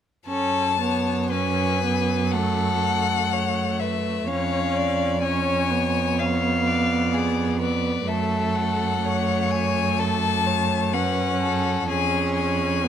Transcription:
0.27 4.24 F#2 soft
0.27 0.77 C#4 soft
0.27 0.76 A4 soft
0.27 1.28 A5 medium
0.81 1.34 B3 soft
0.81 1.33 C#5 soft
1.31 1.84 C#4 soft
1.31 2.35 B4 soft
1.31 2.33 G#5 medium
1.84 2.35 B3 soft
2.32 2.81 A3 soft
2.32 3.34 A4 soft
2.32 3.81 F#5 medium
2.82 4.29 A3 soft
3.33 3.82 C#5 soft
3.80 4.27 B4 soft
3.80 4.30 E5 soft
4.27 8.03 F2 soft
4.27 5.22 C#4 soft
4.27 4.78 C#5 soft
4.27 5.22 F5 medium
4.76 5.25 D5 soft
5.22 5.72 C#4 soft
5.22 6.20 C#5 soft
5.22 6.22 G#5 medium
5.71 8.07 B3 soft
6.19 6.68 C#5 medium
6.19 7.15 F5 soft
6.67 7.60 D5 medium
7.14 7.61 G#4 soft
7.61 8.10 B4 soft
7.61 8.09 D5 soft
8.07 11.85 F#2 soft
8.07 9.01 A3 soft
8.07 9.06 A4 soft
8.07 8.57 E5 soft
8.55 9.52 F#5 medium
9.03 10.95 A3 soft
9.03 10.01 C#5 soft
9.51 10.00 G#5 medium
9.98 10.48 A4 soft
9.98 10.94 A5 medium
10.47 10.95 C#5 soft
10.93 11.89 C#4 soft
10.93 11.41 B4 soft
10.93 11.88 F#5 medium
11.42 11.91 A4 soft
11.88 12.88 F2 soft
11.88 12.86 C#4 soft
11.88 12.84 G#4 soft
11.88 12.35 G#5 medium
12.35 12.88 G#5 medium
12.84 12.88 B3 soft

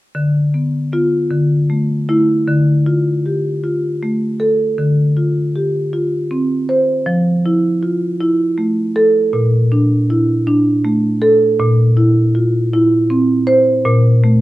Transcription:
0.15 1.28 D3 medium
0.54 0.91 B3 soft
0.93 1.27 B3 soft
0.93 1.28 F4 medium
1.31 2.44 D3 medium
1.70 2.08 A3 soft
2.09 2.44 A3 soft
2.09 2.44 E4 medium
2.48 4.74 D3 medium
2.86 3.48 F4 soft
3.26 3.64 G4 soft
3.64 4.25 F4 soft
4.03 4.63 A3 soft
4.40 4.78 A4 medium
4.78 7.03 D3 medium
5.17 5.78 F4 soft
5.56 5.93 G4 soft
5.93 6.54 F4 soft
6.31 6.92 C4 soft
6.69 7.07 C5 medium
7.06 9.30 F3 medium
7.46 8.06 E4 soft
7.83 8.21 F4 soft
8.21 8.81 E4 medium
8.58 9.19 A3 soft
8.96 9.34 A4 medium
9.33 11.55 A#2 medium
9.72 10.32 D4 medium
10.10 10.47 E4 soft
10.47 11.07 D4 medium
10.85 11.45 A3 medium
11.22 11.60 A4 medium
11.59 13.81 A#2 medium
11.97 12.57 E4 medium
12.35 12.72 F4 soft
12.73 13.33 E4 medium
13.10 13.70 C4 medium
13.47 13.85 C5 medium
13.85 14.41 A#2 medium
14.24 14.41 A3 medium

